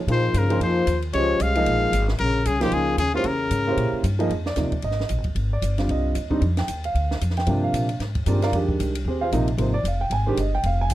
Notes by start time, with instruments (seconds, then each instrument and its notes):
0.07 upright bass A#2, grand piano F3 A#3 D#4 G#4 C5, trombone F3, ride
0.12 trumpet C5
0.34 upright bass G2, trombone C#3, hi-hat pedal, ride
0.38 trumpet A#4
0.50 grand piano F3 A#3 D#4 G#4 C5, ride
0.60 upright bass F2, trombone F3, trumpet C5, ride
0.87 upright bass D#2, hi-hat pedal, ride
1.02 ride
1.13 upright bass C#2, trombone F3, grand piano G#3 C#4 G4 C5 D#5, trumpet C#5, ride
1.40 upright bass C2, trombone G#3, trumpet F5, hi-hat pedal, ride
1.55 grand piano F3 A#3 D#4 G#4 D#5, ride
1.66 upright bass A#1, ride
1.92 upright bass G#1, hi-hat pedal, ride
2.08 snare
2.18 upright bass A#1, trombone C#3, trumpet A#4, ride
2.45 upright bass C2, trombone C#3, trumpet G#4, hi-hat pedal, ride
2.60 trombone A#2, grand piano F3 A#3 D#4 G#4 C5, trumpet G4, snare, ride
2.71 upright bass C#2, trombone C#3, trumpet G#4, ride
2.97 upright bass D#2, trombone C#3, trumpet G#4, hi-hat pedal, ride
3.14 trombone G#2, grand piano A#3 C#4 E4 G4 C5, trumpet F4
3.24 upright bass E2, trombone C#3, trumpet A#4, ride
3.51 upright bass G#2, hi-hat pedal, ride
3.67 grand piano A#3 C#4 E4 G4 C5
3.77 upright bass A#2, ride
3.93 muted upright bass stroke
4.03 upright bass G2, hi-hat pedal, ride
4.19 grand piano F3 A#3 D#4 G#4 D#5, ride
4.30 upright bass F2, ride
4.46 grand piano D5, snare
4.56 upright bass D#2, grand piano C3 F3 A#3 D#4, snare, hi-hat pedal, ride
4.72 muted upright bass stroke, kick, ride
4.82 upright bass G#1, grand piano D#5, ride
4.91 snare
5.00 snare
5.09 upright bass A#1, hi-hat pedal, ride
5.18 upright bass G#1
5.24 upright bass F1, kick, ride
5.35 upright bass G#1, ride
5.53 grand piano D5
5.62 upright bass G1, hi-hat pedal, ride
5.78 grand piano D3 G3 C4 F4, snare, ride
5.88 upright bass C2, grand piano D#5, ride
6.15 upright bass D#2, hi-hat pedal, ride
6.30 grand piano D3 G3 C4 D#4, kick
6.41 upright bass F2, ride
6.57 grand piano G5, snare, ride
6.68 upright bass D#2, hi-hat pedal, ride
6.84 grand piano F5, ride
6.95 upright bass D2, ride
7.11 snare
7.21 upright bass F2, hi-hat pedal, ride
7.30 snare
7.37 grand piano G5, snare, ride
7.47 upright bass G2, grand piano C3 F3 A#3 D4, ride
7.64 grand piano F5
7.73 upright bass A#2, hi-hat pedal, ride
7.89 ride
8.00 upright bass G#2, snare, ride
8.15 kick, ride
8.26 upright bass G2, grand piano A#2 D#3 G#3 C4 D4 G4 A#4 D5, hi-hat pedal, ride
8.42 grand piano F4 A#4 D5 F5, snare, ride
8.52 upright bass F2, grand piano D#3 G#3 D4 G4, ride
8.69 kick
8.79 upright bass C2, hi-hat pedal, ride
8.95 ride
9.05 upright bass D#2, grand piano C4 G4 G#4 C5
9.21 grand piano F4 G#4 C5 F5
9.32 upright bass A#1, grand piano C3 F3 A#3 D#4, hi-hat pedal, ride
9.48 ride
9.57 upright bass G#1, grand piano C3 F3 A#3 D#4 C5, ride
9.74 grand piano D5
9.83 upright bass F1, hi-hat pedal, ride
9.88 grand piano F5
10.01 grand piano G5
10.10 upright bass G#1, grand piano G#5, ride
10.26 grand piano D#3 G#3 D4 G4 C5
10.37 upright bass G1, grand piano D#5, hi-hat pedal, ride
10.55 grand piano G5
10.63 upright bass F1, grand piano F5, ride
10.81 grand piano G#5
10.90 upright bass C2, hi-hat pedal, ride